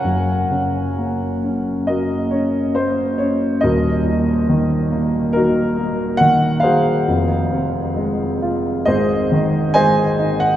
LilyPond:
<<
  \new Staff \with { instrumentName = "Grand piano" } { \time 4/4 \key ges \lydian \tempo 4 = 68 << { fis''4. r8 ees''8 des''8 c''8 des''8 | ees''2 bes'4 ges''8 f''8~ | f''4. r8 ees''4 aes''8. ges''16 | } \\ { <bes' cis''>4. r8 <ges' bes'>2 | <ges' bes'>2 <ees' ges'>4. <aes' c''>8~ | <aes' c''>4. r8 <aes' c''>4 <c'' ees''>4 | } >> }
  \new Staff \with { instrumentName = "Grand piano" } { \clef bass \time 4/4 \key ges \lydian <ges,, ges,>8 des8 bes8 des'8 bes8 des'8 bes8 des'8 | <ees,, ees,>8 bes,8 ees8 bes8 ges8 bes8 ees8 ges8 | <f,, f,>8 c8 aes8 f'8 <aes,, aes,>8 ees8 aes8 ees'8 | }
>>